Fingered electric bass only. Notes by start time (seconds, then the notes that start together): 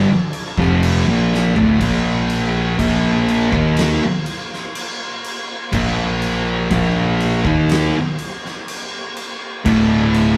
0.57 F1
1.08 A#1
1.57 D1
1.81 A#1
2.79 A#1
3.52 D#2
5.73 A#1
6.71 A#1
7.45 D#2
9.66 D1